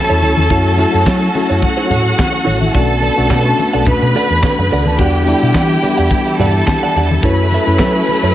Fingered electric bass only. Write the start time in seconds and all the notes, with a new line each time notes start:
0.10 E2
0.23 D2
0.38 E2
0.94 F#2
1.06 F#3
1.50 F#2
1.91 A2
2.47 A1
2.75 B1
3.18 B1
3.31 B2
3.74 B1
4.02 B2
4.30 E2
4.58 F#2
4.72 C#2
4.86 D2
4.99 E2
5.43 B2
5.55 E3
5.98 E2
6.39 G2
6.96 E2
7.23 F#2
7.67 F#2
7.79 F#3
8.23 F#2